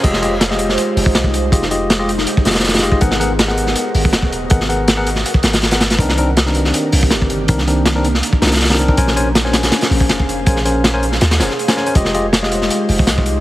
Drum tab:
CC |x-------------------------------|--------------------------------|--------------------------------|--------------------------------|
HH |x---x---x---x---x---o---x---x---|x---x---x---x---x---xxxxxxxxx---|x---x---x---x---x---o---x---x---|x---x---x---x---x---x-x-x-x-x-x-|
SD |--o-----o-o---o---------o-------|--o-----o-----o-----oooooooo----|--o-----o-o---o---------o-------|--o-----o-----o-----o-o-o-o-o-o-|
BD |o---------------------o---o-----|o-----------------o-----------o-|o---------------------o---o-----|o-----------------o-------------|

CC |--------------------------------|--------------------------------|--------------------------------|--------------------------------|
HH |x---x---x---x---x---o---x---x---|x---x---x---x---x---xxxxxxxxx---|x---x---x---x-x-x-x-o---x---x---|x---x---x---x---x-x-x---x-x---x-|
SD |--o-----o-o---o---------o-------|--o-----o-----o-----oooooooo----|--o-----o-o-o-o-o-o-----o-------|--o-----o-----o-o-o-o-o---o-o---|
BD |o---------------------o---o-----|o-----------------o-----------o-|o---------------------o---o-----|o-------------------------------|

CC |--------------------------------|
HH |x---x---x---x---x---o---x---x---|
SD |--o-----o-o---o---------o-------|
BD |o---------------------o---o-----|